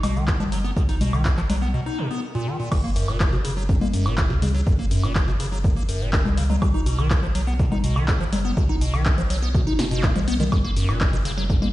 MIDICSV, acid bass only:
0, 0, Header, 1, 2, 480
1, 0, Start_track
1, 0, Key_signature, 6, "major"
1, 0, Tempo, 487805
1, 753, Time_signature, 4, 2, 24, 8
1, 11541, End_track
2, 0, Start_track
2, 0, Title_t, "Acid bass"
2, 0, Program_c, 0, 38
2, 32, Note_on_c, 0, 47, 78
2, 153, Note_on_c, 0, 51, 78
2, 168, Note_off_c, 0, 47, 0
2, 252, Note_off_c, 0, 51, 0
2, 394, Note_on_c, 0, 53, 101
2, 433, Note_off_c, 0, 53, 0
2, 512, Note_on_c, 0, 54, 74
2, 579, Note_off_c, 0, 54, 0
2, 634, Note_on_c, 0, 59, 77
2, 699, Note_off_c, 0, 59, 0
2, 753, Note_on_c, 0, 47, 85
2, 819, Note_off_c, 0, 47, 0
2, 874, Note_on_c, 0, 63, 75
2, 939, Note_off_c, 0, 63, 0
2, 992, Note_on_c, 0, 47, 77
2, 1113, Note_on_c, 0, 51, 76
2, 1128, Note_off_c, 0, 47, 0
2, 1211, Note_off_c, 0, 51, 0
2, 1353, Note_on_c, 0, 53, 99
2, 1393, Note_off_c, 0, 53, 0
2, 1472, Note_on_c, 0, 54, 76
2, 1539, Note_off_c, 0, 54, 0
2, 1593, Note_on_c, 0, 59, 75
2, 1659, Note_off_c, 0, 59, 0
2, 1712, Note_on_c, 0, 47, 83
2, 1779, Note_off_c, 0, 47, 0
2, 1833, Note_on_c, 0, 63, 78
2, 1952, Note_on_c, 0, 47, 80
2, 1967, Note_off_c, 0, 63, 0
2, 2052, Note_off_c, 0, 47, 0
2, 2073, Note_on_c, 0, 59, 79
2, 2172, Note_off_c, 0, 59, 0
2, 2313, Note_on_c, 0, 46, 101
2, 2433, Note_on_c, 0, 51, 75
2, 2447, Note_off_c, 0, 46, 0
2, 2533, Note_off_c, 0, 51, 0
2, 2554, Note_on_c, 0, 46, 80
2, 2652, Note_off_c, 0, 46, 0
2, 2672, Note_on_c, 0, 42, 84
2, 2739, Note_off_c, 0, 42, 0
2, 2793, Note_on_c, 0, 58, 77
2, 2859, Note_off_c, 0, 58, 0
2, 2912, Note_on_c, 0, 42, 77
2, 3032, Note_on_c, 0, 46, 79
2, 3047, Note_off_c, 0, 42, 0
2, 3131, Note_off_c, 0, 46, 0
2, 3272, Note_on_c, 0, 47, 100
2, 3312, Note_off_c, 0, 47, 0
2, 3390, Note_on_c, 0, 49, 80
2, 3458, Note_off_c, 0, 49, 0
2, 3512, Note_on_c, 0, 54, 74
2, 3579, Note_off_c, 0, 54, 0
2, 3631, Note_on_c, 0, 42, 84
2, 3698, Note_off_c, 0, 42, 0
2, 3751, Note_on_c, 0, 58, 78
2, 3818, Note_off_c, 0, 58, 0
2, 3870, Note_on_c, 0, 42, 78
2, 3991, Note_on_c, 0, 46, 77
2, 4006, Note_off_c, 0, 42, 0
2, 4091, Note_off_c, 0, 46, 0
2, 4233, Note_on_c, 0, 47, 100
2, 4273, Note_off_c, 0, 47, 0
2, 4352, Note_on_c, 0, 49, 76
2, 4419, Note_off_c, 0, 49, 0
2, 4473, Note_on_c, 0, 54, 78
2, 4539, Note_off_c, 0, 54, 0
2, 4592, Note_on_c, 0, 42, 85
2, 4659, Note_off_c, 0, 42, 0
2, 4713, Note_on_c, 0, 58, 76
2, 4779, Note_off_c, 0, 58, 0
2, 4832, Note_on_c, 0, 42, 77
2, 4953, Note_on_c, 0, 46, 78
2, 4968, Note_off_c, 0, 42, 0
2, 5051, Note_off_c, 0, 46, 0
2, 5192, Note_on_c, 0, 47, 102
2, 5232, Note_off_c, 0, 47, 0
2, 5312, Note_on_c, 0, 49, 77
2, 5379, Note_off_c, 0, 49, 0
2, 5432, Note_on_c, 0, 54, 79
2, 5498, Note_off_c, 0, 54, 0
2, 5552, Note_on_c, 0, 42, 86
2, 5619, Note_off_c, 0, 42, 0
2, 5673, Note_on_c, 0, 58, 76
2, 5739, Note_off_c, 0, 58, 0
2, 5792, Note_on_c, 0, 42, 76
2, 5913, Note_on_c, 0, 46, 78
2, 5928, Note_off_c, 0, 42, 0
2, 6012, Note_off_c, 0, 46, 0
2, 6153, Note_on_c, 0, 47, 105
2, 6193, Note_off_c, 0, 47, 0
2, 6272, Note_on_c, 0, 49, 77
2, 6339, Note_off_c, 0, 49, 0
2, 6394, Note_on_c, 0, 54, 74
2, 6459, Note_off_c, 0, 54, 0
2, 6513, Note_on_c, 0, 47, 82
2, 6580, Note_off_c, 0, 47, 0
2, 6634, Note_on_c, 0, 63, 75
2, 6699, Note_off_c, 0, 63, 0
2, 6752, Note_on_c, 0, 47, 77
2, 6872, Note_on_c, 0, 51, 76
2, 6887, Note_off_c, 0, 47, 0
2, 6971, Note_off_c, 0, 51, 0
2, 7113, Note_on_c, 0, 53, 100
2, 7153, Note_off_c, 0, 53, 0
2, 7231, Note_on_c, 0, 54, 80
2, 7299, Note_off_c, 0, 54, 0
2, 7353, Note_on_c, 0, 59, 77
2, 7419, Note_off_c, 0, 59, 0
2, 7472, Note_on_c, 0, 47, 84
2, 7539, Note_off_c, 0, 47, 0
2, 7593, Note_on_c, 0, 63, 80
2, 7659, Note_off_c, 0, 63, 0
2, 7712, Note_on_c, 0, 47, 78
2, 7833, Note_on_c, 0, 51, 76
2, 7848, Note_off_c, 0, 47, 0
2, 7932, Note_off_c, 0, 51, 0
2, 8073, Note_on_c, 0, 53, 102
2, 8113, Note_off_c, 0, 53, 0
2, 8191, Note_on_c, 0, 54, 75
2, 8259, Note_off_c, 0, 54, 0
2, 8313, Note_on_c, 0, 59, 77
2, 8379, Note_off_c, 0, 59, 0
2, 8432, Note_on_c, 0, 47, 86
2, 8499, Note_off_c, 0, 47, 0
2, 8553, Note_on_c, 0, 63, 77
2, 8619, Note_off_c, 0, 63, 0
2, 8671, Note_on_c, 0, 47, 77
2, 8792, Note_on_c, 0, 51, 77
2, 8807, Note_off_c, 0, 47, 0
2, 8891, Note_off_c, 0, 51, 0
2, 9033, Note_on_c, 0, 53, 100
2, 9073, Note_off_c, 0, 53, 0
2, 9152, Note_on_c, 0, 54, 81
2, 9219, Note_off_c, 0, 54, 0
2, 9273, Note_on_c, 0, 59, 76
2, 9339, Note_off_c, 0, 59, 0
2, 9392, Note_on_c, 0, 47, 87
2, 9459, Note_off_c, 0, 47, 0
2, 9514, Note_on_c, 0, 63, 79
2, 9579, Note_off_c, 0, 63, 0
2, 9632, Note_on_c, 0, 47, 80
2, 9699, Note_off_c, 0, 47, 0
2, 9754, Note_on_c, 0, 47, 106
2, 9872, Note_on_c, 0, 59, 84
2, 9887, Note_off_c, 0, 47, 0
2, 9939, Note_off_c, 0, 59, 0
2, 9993, Note_on_c, 0, 53, 104
2, 10033, Note_off_c, 0, 53, 0
2, 10112, Note_on_c, 0, 59, 102
2, 10179, Note_off_c, 0, 59, 0
2, 10233, Note_on_c, 0, 51, 101
2, 10273, Note_off_c, 0, 51, 0
2, 10352, Note_on_c, 0, 42, 86
2, 10419, Note_off_c, 0, 42, 0
2, 10474, Note_on_c, 0, 58, 74
2, 10539, Note_off_c, 0, 58, 0
2, 10593, Note_on_c, 0, 42, 78
2, 10714, Note_on_c, 0, 46, 75
2, 10729, Note_off_c, 0, 42, 0
2, 10812, Note_off_c, 0, 46, 0
2, 10954, Note_on_c, 0, 47, 103
2, 10993, Note_off_c, 0, 47, 0
2, 11073, Note_on_c, 0, 49, 78
2, 11139, Note_off_c, 0, 49, 0
2, 11194, Note_on_c, 0, 54, 74
2, 11259, Note_off_c, 0, 54, 0
2, 11313, Note_on_c, 0, 42, 84
2, 11380, Note_off_c, 0, 42, 0
2, 11434, Note_on_c, 0, 58, 75
2, 11499, Note_off_c, 0, 58, 0
2, 11541, End_track
0, 0, End_of_file